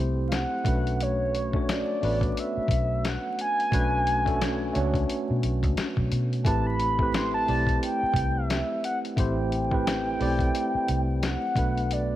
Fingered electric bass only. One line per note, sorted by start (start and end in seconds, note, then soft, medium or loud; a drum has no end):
0.00 0.44 C2 medium
0.66 1.82 B1 medium
2.03 2.31 A1 medium
2.57 muted fingered electric bass stroke soft
2.69 3.16 B1 medium
3.73 4.70 B1 loud
4.76 5.04 C#2 medium
5.30 5.41 B2 medium
5.43 5.64 B1 medium
5.64 5.75 C#2 medium
5.78 muted fingered electric bass stroke soft
5.98 6.09 B1 medium
6.12 6.47 B2 medium
6.45 7.43 A1 medium
7.49 7.77 B1 medium
8.03 muted fingered electric bass stroke soft
8.14 8.61 C2 medium
9.18 10.16 A1 medium
10.21 10.49 B1 medium
10.75 muted fingered electric bass stroke soft
10.89 11.35 C2 medium
11.56 12.16 B1 medium